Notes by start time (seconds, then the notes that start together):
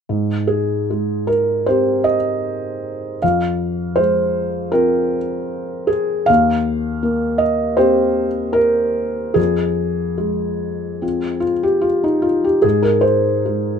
0.09 G#2
0.47 G#4
0.90 G#3
1.27 A#4
1.66 C4 G4 C5
2.04 D#5
3.22 F2 F5
3.96 G#3 C5
4.72 C4 F4 A#4
5.87 G#4
6.26 D#2 F5
7.03 A#3
7.38 D#5
7.77 C4 G4 C5
8.53 A#4
9.34 F2 G#4
10.18 G#3
11.02 C4 F4
11.40 F4
11.63 G4
11.81 F4
12.04 D#4
12.22 F4
12.44 G4
12.62 G#2 G#4
12.82 A#4
13.01 C5
13.46 G#3